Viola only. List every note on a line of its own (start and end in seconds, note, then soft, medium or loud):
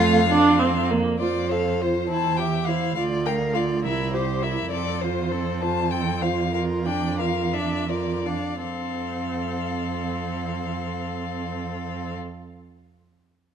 0.00 0.20 A3 medium
0.28 0.60 D4 loud
0.59 0.92 C4 medium
0.90 1.20 A#3 medium
1.20 1.52 F4 soft
1.51 1.82 A4 soft
1.81 2.10 F4 soft
2.10 2.40 E4 soft
2.38 2.69 G4 soft
2.67 2.96 E4 soft
2.96 3.27 F4 soft
3.25 3.56 A#4 soft
3.54 3.83 F4 soft
3.85 4.15 E4 soft
4.14 4.44 G4 soft
4.42 4.72 E4 soft
4.73 5.04 C4 soft
5.03 5.33 F4 soft
5.32 5.63 C4 soft
5.61 5.91 F4 soft
5.92 6.23 C4 soft
6.22 6.53 F4 soft
6.54 6.87 F4 soft
6.86 7.22 D4 soft
7.20 7.55 F4 soft
7.53 7.89 D4 soft
7.89 8.27 F4 soft
8.26 8.62 D4 soft
8.63 12.16 C4 soft